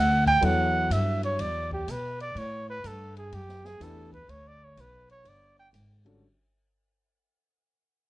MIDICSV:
0, 0, Header, 1, 5, 480
1, 0, Start_track
1, 0, Tempo, 483092
1, 424, Time_signature, 4, 2, 24, 8
1, 8045, End_track
2, 0, Start_track
2, 0, Title_t, "Trumpet"
2, 0, Program_c, 0, 56
2, 0, Note_on_c, 0, 78, 84
2, 262, Note_off_c, 0, 78, 0
2, 268, Note_on_c, 0, 79, 106
2, 445, Note_on_c, 0, 78, 92
2, 460, Note_off_c, 0, 79, 0
2, 913, Note_on_c, 0, 76, 79
2, 927, Note_off_c, 0, 78, 0
2, 1226, Note_off_c, 0, 76, 0
2, 1239, Note_on_c, 0, 73, 84
2, 1398, Note_on_c, 0, 74, 92
2, 1413, Note_off_c, 0, 73, 0
2, 1708, Note_off_c, 0, 74, 0
2, 1721, Note_on_c, 0, 67, 73
2, 1891, Note_on_c, 0, 71, 77
2, 1905, Note_off_c, 0, 67, 0
2, 2194, Note_off_c, 0, 71, 0
2, 2201, Note_on_c, 0, 74, 95
2, 2365, Note_on_c, 0, 73, 89
2, 2380, Note_off_c, 0, 74, 0
2, 2671, Note_off_c, 0, 73, 0
2, 2678, Note_on_c, 0, 71, 95
2, 2847, Note_on_c, 0, 69, 82
2, 2862, Note_off_c, 0, 71, 0
2, 3147, Note_off_c, 0, 69, 0
2, 3153, Note_on_c, 0, 68, 82
2, 3319, Note_on_c, 0, 67, 76
2, 3334, Note_off_c, 0, 68, 0
2, 3628, Note_on_c, 0, 68, 85
2, 3643, Note_off_c, 0, 67, 0
2, 3804, Note_on_c, 0, 69, 75
2, 3819, Note_off_c, 0, 68, 0
2, 4100, Note_off_c, 0, 69, 0
2, 4106, Note_on_c, 0, 71, 83
2, 4272, Note_on_c, 0, 73, 84
2, 4287, Note_off_c, 0, 71, 0
2, 4444, Note_on_c, 0, 74, 93
2, 4459, Note_off_c, 0, 73, 0
2, 4609, Note_on_c, 0, 73, 83
2, 4624, Note_off_c, 0, 74, 0
2, 4772, Note_on_c, 0, 71, 75
2, 4787, Note_off_c, 0, 73, 0
2, 5071, Note_off_c, 0, 71, 0
2, 5077, Note_on_c, 0, 73, 94
2, 5247, Note_on_c, 0, 74, 81
2, 5262, Note_off_c, 0, 73, 0
2, 5549, Note_off_c, 0, 74, 0
2, 5555, Note_on_c, 0, 79, 96
2, 5647, Note_off_c, 0, 79, 0
2, 8045, End_track
3, 0, Start_track
3, 0, Title_t, "Upright piano"
3, 0, Program_c, 1, 0
3, 411, Note_on_c, 1, 54, 56
3, 416, Note_on_c, 1, 59, 52
3, 419, Note_on_c, 1, 64, 51
3, 420, Note_on_c, 1, 69, 51
3, 428, Note_on_c, 1, 73, 62
3, 1758, Note_off_c, 1, 54, 0
3, 1761, Note_off_c, 1, 59, 0
3, 1762, Note_off_c, 1, 64, 0
3, 1763, Note_off_c, 1, 69, 0
3, 1767, Note_off_c, 1, 73, 0
3, 3777, Note_on_c, 1, 52, 59
3, 3783, Note_on_c, 1, 57, 53
3, 3787, Note_on_c, 1, 62, 54
3, 3788, Note_on_c, 1, 67, 51
3, 3794, Note_on_c, 1, 71, 66
3, 4065, Note_off_c, 1, 52, 0
3, 4068, Note_off_c, 1, 57, 0
3, 4070, Note_off_c, 1, 62, 0
3, 4071, Note_off_c, 1, 67, 0
3, 4074, Note_off_c, 1, 71, 0
3, 6011, Note_on_c, 1, 50, 57
3, 6012, Note_on_c, 1, 55, 52
3, 6013, Note_on_c, 1, 61, 57
3, 6021, Note_on_c, 1, 66, 53
3, 6022, Note_on_c, 1, 69, 69
3, 6177, Note_off_c, 1, 50, 0
3, 6177, Note_off_c, 1, 55, 0
3, 6178, Note_off_c, 1, 61, 0
3, 6181, Note_off_c, 1, 66, 0
3, 6182, Note_off_c, 1, 69, 0
3, 8045, End_track
4, 0, Start_track
4, 0, Title_t, "Upright bass"
4, 0, Program_c, 2, 32
4, 0, Note_on_c, 2, 38, 83
4, 405, Note_off_c, 2, 38, 0
4, 421, Note_on_c, 2, 40, 82
4, 887, Note_off_c, 2, 40, 0
4, 896, Note_on_c, 2, 43, 86
4, 1364, Note_off_c, 2, 43, 0
4, 1381, Note_on_c, 2, 40, 75
4, 1847, Note_off_c, 2, 40, 0
4, 1865, Note_on_c, 2, 47, 82
4, 2329, Note_off_c, 2, 47, 0
4, 2337, Note_on_c, 2, 45, 81
4, 2804, Note_off_c, 2, 45, 0
4, 2821, Note_on_c, 2, 43, 86
4, 3286, Note_off_c, 2, 43, 0
4, 3302, Note_on_c, 2, 42, 74
4, 3767, Note_off_c, 2, 42, 0
4, 3781, Note_on_c, 2, 40, 85
4, 4246, Note_off_c, 2, 40, 0
4, 4256, Note_on_c, 2, 38, 77
4, 4724, Note_off_c, 2, 38, 0
4, 4738, Note_on_c, 2, 35, 80
4, 5205, Note_off_c, 2, 35, 0
4, 5213, Note_on_c, 2, 31, 72
4, 5682, Note_off_c, 2, 31, 0
4, 5692, Note_on_c, 2, 32, 80
4, 6162, Note_off_c, 2, 32, 0
4, 8045, End_track
5, 0, Start_track
5, 0, Title_t, "Drums"
5, 264, Note_on_c, 9, 36, 43
5, 268, Note_on_c, 9, 51, 39
5, 363, Note_off_c, 9, 36, 0
5, 367, Note_off_c, 9, 51, 0
5, 422, Note_on_c, 9, 51, 62
5, 522, Note_off_c, 9, 51, 0
5, 905, Note_on_c, 9, 44, 45
5, 905, Note_on_c, 9, 51, 64
5, 1005, Note_off_c, 9, 44, 0
5, 1005, Note_off_c, 9, 51, 0
5, 1225, Note_on_c, 9, 51, 41
5, 1325, Note_off_c, 9, 51, 0
5, 1383, Note_on_c, 9, 51, 57
5, 1482, Note_off_c, 9, 51, 0
5, 1704, Note_on_c, 9, 36, 50
5, 1803, Note_off_c, 9, 36, 0
5, 1868, Note_on_c, 9, 44, 49
5, 1868, Note_on_c, 9, 51, 58
5, 1967, Note_off_c, 9, 44, 0
5, 1967, Note_off_c, 9, 51, 0
5, 2189, Note_on_c, 9, 51, 37
5, 2288, Note_off_c, 9, 51, 0
5, 2349, Note_on_c, 9, 51, 52
5, 2449, Note_off_c, 9, 51, 0
5, 2822, Note_on_c, 9, 44, 51
5, 2822, Note_on_c, 9, 51, 56
5, 2921, Note_off_c, 9, 44, 0
5, 2921, Note_off_c, 9, 51, 0
5, 3146, Note_on_c, 9, 51, 38
5, 3245, Note_off_c, 9, 51, 0
5, 3303, Note_on_c, 9, 51, 58
5, 3403, Note_off_c, 9, 51, 0
5, 3465, Note_on_c, 9, 38, 29
5, 3564, Note_off_c, 9, 38, 0
5, 3622, Note_on_c, 9, 38, 38
5, 3721, Note_off_c, 9, 38, 0
5, 3786, Note_on_c, 9, 44, 51
5, 3786, Note_on_c, 9, 51, 64
5, 3885, Note_off_c, 9, 44, 0
5, 3885, Note_off_c, 9, 51, 0
5, 4103, Note_on_c, 9, 36, 52
5, 4107, Note_on_c, 9, 51, 37
5, 4202, Note_off_c, 9, 36, 0
5, 4207, Note_off_c, 9, 51, 0
5, 4264, Note_on_c, 9, 51, 57
5, 4363, Note_off_c, 9, 51, 0
5, 4742, Note_on_c, 9, 44, 51
5, 4742, Note_on_c, 9, 51, 60
5, 4842, Note_off_c, 9, 44, 0
5, 4842, Note_off_c, 9, 51, 0
5, 5063, Note_on_c, 9, 51, 38
5, 5162, Note_off_c, 9, 51, 0
5, 5220, Note_on_c, 9, 51, 60
5, 5319, Note_off_c, 9, 51, 0
5, 5700, Note_on_c, 9, 44, 47
5, 5700, Note_on_c, 9, 51, 63
5, 5799, Note_off_c, 9, 44, 0
5, 5799, Note_off_c, 9, 51, 0
5, 6018, Note_on_c, 9, 51, 40
5, 6117, Note_off_c, 9, 51, 0
5, 8045, End_track
0, 0, End_of_file